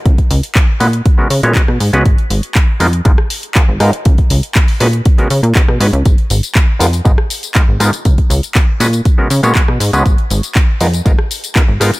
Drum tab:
HH |xxoxx-oxx-oxx-ox|xxoxx-oxx-oxx-ox|xxoxxooxxxoxx-ox|xxoxx-oxx-oxx-ox|
TB |----------------|----------------|----------------|x-xxx-xxx-xxx-xx|
CP |----x-------x---|----x-------x---|----x-------x---|----x-------x---|
SD |-------------r--|---------r----r-|-------------r--|---------r----r-|
BD |oo--o---o---o---|o---o---o---o---|oo--o---o---o---|o---o---o---o---|

HH |xxoxx-oxx-oxx-ox|xxoxx-oxx-oxx-ox|
TB |x-xxx-xxx-xxx-xx|x-xxx-xxx-xxx-xx|
CP |----x-------x---|----x-------x---|
SD |-------------r--|---------r----r-|
BD |oo--o---o---o---|o---o---o---o---|